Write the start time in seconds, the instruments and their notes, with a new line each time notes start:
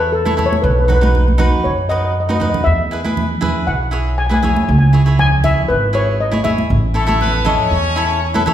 Already playing: upright bass E2, cavaquinho E4 A4 C#5
0.12 steel pan A4
0.25 cavaquinho E4 A4 C#5, high conga
0.37 cavaquinho E4 A4 C#5, low conga
0.46 steel pan C#5
0.53 high conga
0.62 upright bass B1, steel pan B4
0.71 steel pan B4
0.79 steel pan B4
0.85 cavaquinho D#4, steel pan B4
0.89 cavaquinho F#4 B4, steel pan B4, low conga
1.01 cavaquinho D#4 F#4 B4, steel pan B4, high conga
1.15 low conga
1.28 high conga
1.38 cavaquinho D#4 F#4 B4, low conga
1.64 upright bass F#2, steel pan C#5
1.89 cavaquinho D#4 F#4 B4, steel pan D#5
1.97 steel pan D#5
2.05 steel pan D#5
2.12 steel pan D#5
2.20 steel pan D#5
2.28 cavaquinho D#4 F#4 B4, steel pan D#5, high conga
2.35 steel pan D#5
2.40 cavaquinho D#4 F#4 B4, steel pan D#5, low conga
2.50 steel pan D#5
2.54 low conga
2.64 upright bass E2, steel pan E5
2.91 cavaquinho E4 G#4 B4
3.04 cavaquinho E4 G#4 B4, high conga
3.17 low conga
3.41 cavaquinho E4 G#4 B4, low conga
3.67 upright bass B1, steel pan F#5
3.91 cavaquinho E4 G#4 C#5
4.18 steel pan G#5
4.26 cavaquinho E4 G#4, steel pan G#5
4.31 cavaquinho B4, steel pan G#5, high conga
4.42 cavaquinho E4 G#4 C#5, steel pan G#5, low conga
4.49 steel pan G#5
4.56 steel pan G#5, high conga
4.63 steel pan G#5
4.69 upright bass C#2, steel pan G#5
4.79 steel pan G#5
4.93 cavaquinho E4 G#4 C#5
5.06 cavaquinho E4 G#4 C#5
5.19 steel pan G#5, low conga
5.44 cavaquinho E4 G#4 C#5, steel pan E5, low conga
5.68 upright bass G#1, steel pan B4
5.93 cavaquinho E4 G#4 C#5, steel pan C#5
6.20 steel pan D#5
6.32 cavaquinho E4 G#4 C#5, high conga
6.44 cavaquinho E4 G#4 C#5, steel pan E5, low conga
6.58 high conga
6.70 upright bass A1
6.94 horn section A3 A4, cavaquinho E4 A4 C#5
7.07 cavaquinho E4 A4 C#5, high conga
7.21 horn section B3 B4, low conga
7.45 horn section C#4 C#5, cavaquinho E4 A4 D#5, low conga
7.71 upright bass E2
7.96 cavaquinho E4 A4 C#5
8.34 cavaquinho E4 A4 B4, high conga
8.46 cavaquinho E4 A4 C#5, low conga